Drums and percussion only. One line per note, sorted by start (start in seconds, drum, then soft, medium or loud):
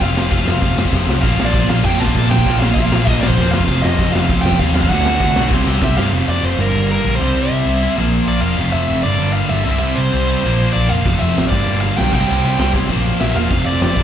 0.00 kick loud
0.00 crash medium
0.17 snare loud
0.31 kick loud
0.31 crash medium
0.48 snare loud
0.62 kick loud
0.62 crash medium
0.78 snare loud
0.85 kick medium
0.93 kick loud
0.93 snare medium
1.09 snare medium
1.23 kick loud
1.23 crash loud
1.23 crash medium
1.40 snare loud
1.54 kick loud
1.54 crash medium
1.70 snare loud
1.84 kick loud
1.84 crash medium
2.02 snare loud
2.08 kick loud
2.15 kick medium
2.15 crash medium
2.31 snare loud
2.38 kick medium
2.46 kick loud
2.46 crash medium
2.62 snare loud
2.76 kick loud
2.76 crash medium
2.92 snare loud
3.07 kick loud
3.07 crash medium
3.23 snare loud
3.30 kick medium
3.37 kick medium
3.37 crash medium
3.53 snare loud
3.60 kick medium
3.68 kick loud
3.68 crash medium
3.84 snare loud
3.99 kick loud
3.99 crash medium
4.15 snare loud
4.29 kick loud
4.29 crash medium
4.46 snare loud
4.52 kick medium
4.59 kick medium
4.59 crash medium
4.76 snare loud
4.82 kick medium
4.90 kick loud
4.90 crash medium
5.06 snare loud
5.20 kick loud
5.20 crash medium
5.36 snare loud
5.51 kick loud
5.51 snare medium
5.67 snare medium
5.82 kick loud
5.82 snare loud
5.98 snare loud
11.05 kick loud
11.05 crash loud
11.37 snare loud
11.37 open hi-hat medium
11.52 kick loud
11.67 open hi-hat medium
11.97 snare loud
11.97 open hi-hat medium
12.13 kick loud
12.13 crash loud
12.58 snare loud
12.58 open hi-hat medium
12.74 kick loud
12.89 kick medium
12.89 open hi-hat medium
13.20 snare loud
13.20 open hi-hat medium
13.50 kick loud
13.50 open hi-hat medium
13.81 snare loud
13.81 open hi-hat medium
13.97 kick loud